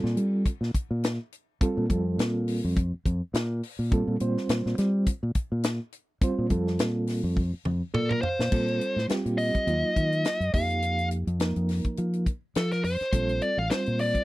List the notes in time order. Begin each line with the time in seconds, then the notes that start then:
Already playing: G3 C4 F4 A4
0.04 A#2, snare
0.16 G3, closed hi-hat
0.46 kick, closed hi-hat
0.61 A#2, snare
0.74 muted fingered electric bass stroke, kick, closed hi-hat
0.91 A#2
1.04 snare, closed hi-hat
1.32 closed hi-hat
1.61 G3 C4 F4 A4, muted fingered electric bass stroke, kick, closed hi-hat
1.77 A#2
1.90 F2 G3 C4 F4 A4, kick, closed hi-hat
2.18 A#2, snare, closed hi-hat
2.48 open hi-hat
2.64 F2
2.77 kick, closed hi-hat
2.94 muted fingered electric bass stroke
3.06 F2, kick, closed hi-hat
3.34 A#2, snare, closed hi-hat
3.63 open hi-hat
3.79 A#2
3.91 G3 C4 F4 A4, kick, closed hi-hat
4.07 A#2
4.20 A#2 G3 C4 F4 C5, closed hi-hat
4.38 snare
4.49 A#2, snare, closed hi-hat
4.66 A#2, snare
4.78 G3, snare, closed hi-hat
5.06 kick, closed hi-hat
5.23 A#2
5.35 kick, closed hi-hat
5.52 A#2
5.63 snare, closed hi-hat
5.92 closed hi-hat
6.21 G3 C4 F4 C5, muted fingered electric bass stroke, kick, closed hi-hat
6.38 A#2
6.50 F2 G3 C4 F4 A4, kick, closed hi-hat
6.67 snare
6.79 A#2, snare, closed hi-hat
7.07 snare, open hi-hat
7.24 F2
7.37 kick
7.53 muted fingered electric bass stroke
7.65 F2, mid tom
7.94 A#2 A4 D5, mid tom
8.09 A#4, mid tom
8.21 C5 F5, floor tom
8.39 A#2, snare
8.51 A#2 G3 C4 F4 A4, kick, crash
8.68 closed hi-hat
8.81 closed hi-hat
8.96 A2, snare
9.08 G3 C4 F4 G4, muted fingered electric bass stroke, snare, closed hi-hat
9.26 A#2, closed hi-hat
9.38 D#5, open hi-hat
9.55 muted fingered electric bass stroke, kick, closed hi-hat
9.67 D#2 F#3 A#3 D#4 F4, closed hi-hat
9.96 D#3, kick, closed hi-hat
10.12 closed hi-hat
10.25 snare, closed hi-hat
10.40 F#2, closed hi-hat
10.53 F2 F3 A#3 D#4 G4 F5, kick, open hi-hat
10.70 closed hi-hat
10.82 closed hi-hat
10.99 closed hi-hat
11.11 closed hi-hat
11.27 F2, closed hi-hat
11.39 F3 A#3 D#4 A#4, snare, closed hi-hat
11.56 F2, closed hi-hat
11.69 snare, open hi-hat
11.84 kick, closed hi-hat
11.97 F3, closed hi-hat
12.13 closed hi-hat
12.26 kick, closed hi-hat
12.55 F3 A4, snare, closed hi-hat
12.71 A#4, snare, closed hi-hat
12.84 F2 C5, open hi-hat
13.00 muted fingered electric bass stroke, snare, closed hi-hat
13.12 A#1 G3 C4 F4 A4, kick, closed hi-hat
13.29 closed hi-hat
13.42 D5, closed hi-hat
13.57 A1 F5
13.70 G3 C4 F4 C5, muted fingered electric bass stroke, snare, closed hi-hat
13.86 A#2, closed hi-hat
13.99 D5, open hi-hat
14.15 muted fingered electric bass stroke, kick, closed hi-hat